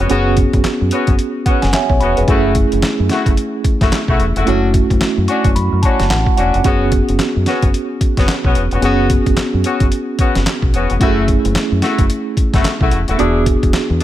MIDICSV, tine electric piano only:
0, 0, Header, 1, 2, 480
1, 0, Start_track
1, 0, Key_signature, 3, "minor"
1, 0, Tempo, 545455
1, 87, Time_signature, 4, 2, 24, 8
1, 12352, End_track
2, 0, Start_track
2, 0, Title_t, "Tine electric piano"
2, 0, Program_c, 0, 4
2, 0, Control_c, 0, 64, 127
2, 74, Note_on_c, 0, 59, 76
2, 81, Note_on_c, 0, 61, 72
2, 87, Note_on_c, 0, 66, 68
2, 97, Note_on_c, 0, 68, 89
2, 1282, Note_on_c, 0, 78, 70
2, 1419, Note_off_c, 0, 78, 0
2, 1425, Note_on_c, 0, 80, 68
2, 1503, Note_off_c, 0, 68, 0
2, 1517, Note_off_c, 0, 80, 0
2, 1529, Note_on_c, 0, 76, 62
2, 1530, Note_on_c, 0, 80, 67
2, 1534, Note_on_c, 0, 73, 55
2, 1659, Note_off_c, 0, 73, 0
2, 1666, Note_off_c, 0, 76, 0
2, 1669, Note_on_c, 0, 73, 68
2, 1752, Note_off_c, 0, 80, 0
2, 1764, Note_on_c, 0, 83, 70
2, 1899, Note_off_c, 0, 73, 0
2, 1912, Note_on_c, 0, 71, 64
2, 1915, Note_on_c, 0, 68, 54
2, 1965, Note_off_c, 0, 59, 0
2, 1969, Note_off_c, 0, 61, 0
2, 1972, Note_off_c, 0, 66, 0
2, 1989, Note_off_c, 0, 83, 0
2, 1994, Note_on_c, 0, 57, 73
2, 2003, Note_on_c, 0, 61, 67
2, 2007, Note_off_c, 0, 68, 0
2, 2010, Note_on_c, 0, 64, 70
2, 2018, Control_c, 0, 64, 0
2, 2018, Note_on_c, 0, 68, 88
2, 2140, Note_off_c, 0, 71, 0
2, 2198, Control_c, 0, 64, 127
2, 3885, Note_off_c, 0, 57, 0
2, 3890, Note_off_c, 0, 61, 0
2, 3893, Note_off_c, 0, 64, 0
2, 3897, Note_off_c, 0, 68, 0
2, 3918, Note_on_c, 0, 57, 77
2, 3925, Note_on_c, 0, 61, 67
2, 3934, Note_on_c, 0, 64, 68
2, 3939, Control_c, 0, 64, 0
2, 3940, Note_on_c, 0, 66, 88
2, 4103, Control_c, 0, 64, 127
2, 4649, Note_on_c, 0, 85, 78
2, 4871, Note_off_c, 0, 85, 0
2, 4889, Note_on_c, 0, 83, 72
2, 5111, Note_off_c, 0, 83, 0
2, 5125, Note_on_c, 0, 81, 75
2, 5349, Note_off_c, 0, 81, 0
2, 5369, Note_on_c, 0, 78, 73
2, 5591, Note_off_c, 0, 78, 0
2, 5606, Note_on_c, 0, 78, 68
2, 5808, Note_off_c, 0, 57, 0
2, 5811, Note_off_c, 0, 61, 0
2, 5815, Note_off_c, 0, 64, 0
2, 5819, Note_off_c, 0, 66, 0
2, 5829, Note_off_c, 0, 78, 0
2, 5838, Note_on_c, 0, 59, 76
2, 5844, Note_on_c, 0, 61, 64
2, 5850, Note_on_c, 0, 66, 67
2, 5859, Control_c, 0, 64, 0
2, 5859, Note_on_c, 0, 68, 86
2, 6012, Control_c, 0, 64, 127
2, 7728, Note_off_c, 0, 59, 0
2, 7730, Note_off_c, 0, 61, 0
2, 7734, Note_off_c, 0, 66, 0
2, 7738, Note_off_c, 0, 68, 0
2, 7753, Note_on_c, 0, 59, 72
2, 7760, Note_on_c, 0, 61, 72
2, 7767, Note_on_c, 0, 66, 70
2, 7776, Note_on_c, 0, 68, 80
2, 9645, Note_off_c, 0, 59, 0
2, 9648, Note_off_c, 0, 61, 0
2, 9652, Note_off_c, 0, 66, 0
2, 9656, Note_off_c, 0, 68, 0
2, 9673, Note_on_c, 0, 57, 75
2, 9681, Note_on_c, 0, 61, 74
2, 9685, Note_on_c, 0, 64, 74
2, 9693, Note_on_c, 0, 66, 67
2, 9698, Control_c, 0, 64, 0
2, 9750, Note_on_c, 0, 68, 84
2, 9759, Note_off_c, 0, 66, 0
2, 9877, Control_c, 0, 64, 127
2, 11565, Note_off_c, 0, 57, 0
2, 11569, Note_off_c, 0, 61, 0
2, 11571, Note_off_c, 0, 64, 0
2, 11598, Note_on_c, 0, 59, 77
2, 11604, Note_off_c, 0, 68, 0
2, 11604, Note_on_c, 0, 62, 66
2, 11612, Note_on_c, 0, 66, 72
2, 11619, Control_c, 0, 64, 0
2, 11619, Note_on_c, 0, 68, 86
2, 11791, Control_c, 0, 64, 127
2, 12352, Note_off_c, 0, 59, 0
2, 12352, Note_off_c, 0, 62, 0
2, 12352, Note_off_c, 0, 66, 0
2, 12352, Note_off_c, 0, 68, 0
2, 12352, End_track
0, 0, End_of_file